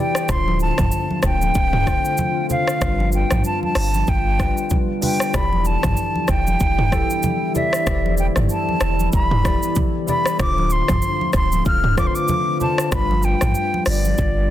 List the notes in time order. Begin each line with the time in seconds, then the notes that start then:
Already playing: D3 E3 G3 B3 E4 G4
0.00 D5 G5
0.15 cross-stick, shaker
0.28 D1 D3 A3 C4 D4 F4 C5 C6, kick, cross-stick, low conga, shaker
0.48 high conga
0.60 A5, shaker
0.78 F1, kick, cross-stick, mid tom, high conga, shaker
0.92 shaker
1.11 high conga
1.23 D1 G5, kick, cross-stick, shaker
1.42 high conga, shaker
1.55 D1, kick, shaker
1.73 mid tom
1.86 D3 D4 F4 C5, kick, cross-stick, high conga, shaker
2.05 shaker
2.17 high conga, low conga, shaker
2.49 D3 D4 F4 C5 F5, low conga, shaker
2.68 cross-stick, shaker
2.80 G1 G3 B3 D4 F4 B4, kick, cross-stick, low conga, shaker
3.00 high conga
3.12 G5, shaker
3.31 A1, cross-stick, mid tom, high conga, shaker
3.44 A5, shaker
3.63 A5, high conga
3.75 G1, cross-stick, open hi-hat, shaker
3.94 high conga, shaker
4.07 G1 G5, kick, shaker
4.38 G3 D4 F4 B4, kick, cross-stick, high conga, shaker
4.57 shaker
4.70 kick, high conga, low conga, shaker
5.01 G3 D4 F4 B4 G5, open hi-hat, low conga, shaker
5.20 cross-stick, shaker
5.33 E1 E3 E4 G4 D5 B5, kick, cross-stick, low conga, shaker
5.53 high conga
5.65 A5, shaker
5.83 G1, kick, cross-stick, mid tom, high conga, shaker
5.97 shaker
6.16 high conga
6.28 E1 G5, kick, cross-stick, shaker
6.47 high conga, shaker
6.60 E1, kick, shaker
6.79 mid tom
6.91 E3 E4 G4 A4, kick, cross-stick, high conga, shaker
7.10 shaker
7.23 high conga, low conga, shaker
7.54 E3 E4 G4 D5 E5, low conga, shaker
7.73 cross-stick, shaker
7.86 E1 E3 E4 G4 C5, kick, cross-stick, low conga, shaker
7.95 D5
8.06 high conga
8.17 G5, shaker
8.36 G1, cross-stick, mid tom, high conga, shaker
8.49 A5, shaker
8.69 high conga
8.81 E1, cross-stick, shaker
8.99 high conga, shaker
9.13 E1 B5, kick, shaker
9.31 mid tom
9.43 E3 E4 G4 D5, kick, cross-stick, high conga, shaker
9.63 shaker
9.75 kick, high conga, low conga, shaker
10.07 E3 E4 G4 D5 B5, low conga, shaker
10.26 cross-stick, shaker
10.38 D1 D3 A3 C4 D4 F4 C5 D6, kick, cross-stick, low conga, shaker
10.58 high conga
10.70 C6, shaker
10.88 F1, kick, cross-stick, mid tom, high conga, shaker
11.02 shaker
11.21 high conga
11.33 D1 C6, kick, cross-stick, shaker
11.52 high conga, shaker
11.65 D1 F6, kick, shaker
11.84 mid tom
11.96 D3 D4 F4 B4 D6, kick, cross-stick, high conga, shaker
12.05 C5 C6
12.15 D6, shaker
12.28 high conga, low conga, shaker
12.59 D3 D4 F4 C5 A5, low conga, shaker
12.78 cross-stick, shaker
12.91 G1 G3 B3 D4 F4 B4 B5, kick, cross-stick, low conga, shaker
13.11 high conga
13.23 G5, shaker
13.41 A1, cross-stick, mid tom, high conga, shaker
13.55 shaker
13.74 high conga
13.86 G1 D5, cross-stick, open hi-hat, shaker
14.05 high conga, shaker
14.18 G1, kick, low conga, shaker